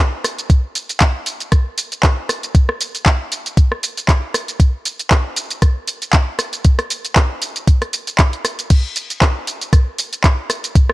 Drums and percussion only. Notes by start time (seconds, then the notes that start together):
0.24 cross-stick, open hi-hat, shaker
0.38 closed hi-hat, shaker
0.50 kick, closed hi-hat, shaker
0.75 open hi-hat, shaker
0.89 closed hi-hat, shaker
1.00 kick, clap, closed hi-hat, shaker
1.26 open hi-hat, shaker
1.40 closed hi-hat, shaker
1.52 kick, cross-stick, closed hi-hat, shaker
1.78 open hi-hat, shaker
1.92 closed hi-hat, shaker
2.03 kick, clap, closed hi-hat, shaker
2.29 cross-stick, open hi-hat, shaker
2.43 closed hi-hat, shaker
2.55 kick, closed hi-hat, shaker
2.69 cross-stick
2.81 open hi-hat, shaker
2.95 closed hi-hat, shaker
3.06 kick, clap, closed hi-hat, shaker
3.32 open hi-hat, shaker
3.46 closed hi-hat, shaker
3.57 kick, closed hi-hat, shaker
3.72 cross-stick
3.83 open hi-hat, shaker
3.97 closed hi-hat, shaker
4.08 kick, clap, closed hi-hat, shaker
4.34 cross-stick, open hi-hat, shaker
4.48 closed hi-hat, shaker
4.60 kick, closed hi-hat, shaker
4.85 open hi-hat, shaker
4.99 closed hi-hat, shaker
5.11 kick, clap, closed hi-hat, shaker
5.36 open hi-hat, shaker
5.50 closed hi-hat, shaker
5.62 kick, cross-stick, closed hi-hat, shaker
5.88 open hi-hat, shaker
6.02 closed hi-hat, shaker
6.13 kick, clap, closed hi-hat, shaker
6.39 cross-stick, open hi-hat, shaker
6.53 closed hi-hat, shaker
6.65 kick, closed hi-hat, shaker
6.79 cross-stick, closed hi-hat
6.90 open hi-hat, shaker
7.05 closed hi-hat, shaker
7.16 kick, clap, closed hi-hat, shaker
7.42 open hi-hat, shaker
7.56 closed hi-hat, shaker
7.67 kick, closed hi-hat, shaker
7.82 cross-stick, closed hi-hat
7.93 open hi-hat, shaker
8.07 closed hi-hat, shaker
8.18 kick, clap, closed hi-hat, shaker
8.33 closed hi-hat
8.45 cross-stick, open hi-hat, shaker
8.59 closed hi-hat, shaker
8.70 kick, closed hi-hat, crash, shaker
8.96 open hi-hat, shaker
9.10 closed hi-hat, shaker
9.22 kick, clap, closed hi-hat, shaker
9.47 open hi-hat, shaker
9.61 closed hi-hat, shaker
9.73 kick, cross-stick, closed hi-hat, shaker
9.98 open hi-hat, shaker
10.13 closed hi-hat, shaker
10.24 kick, clap, closed hi-hat, shaker
10.50 cross-stick, open hi-hat, shaker
10.64 closed hi-hat, shaker
10.75 kick, closed hi-hat, shaker
10.90 cross-stick